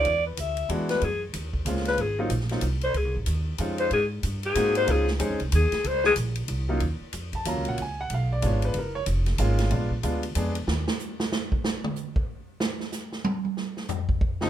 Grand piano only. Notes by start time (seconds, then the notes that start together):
0.70 G#3 B3 D4 E4 F#4
1.67 G#3 A#3 C4 C#4 F4
2.19 F#3 A#3 C4 D#4 F4
2.51 F#3 A#3 C4 D#4 F4
3.60 G#3 C4 C#4 D#4 F4
4.56 G#3 A#3 C4 D#4 F#4
4.87 G#3 C4 C#4 D#4 F4
5.19 G#3 C4 C#4 D#4 G#4
6.69 F#3 A#3 C#4 D#4 F4
7.35 A5
7.46 F#3 A#3 C#4 F4 A#5
7.69 F#5
7.82 G#5
8.01 F#5
8.14 F5
8.32 D5
8.42 G#3 B3 D4 F4
8.46 C#5
8.65 B4
8.78 A#4
8.95 C#5
9.39 G#3 A#3 C#4 F4
9.71 G#3 B3 D4 F4
10.03 G#3 B3 D4 F4
10.35 G#3 B3 D4 G#4
14.41 C#2 F3 G#3 C4 D#4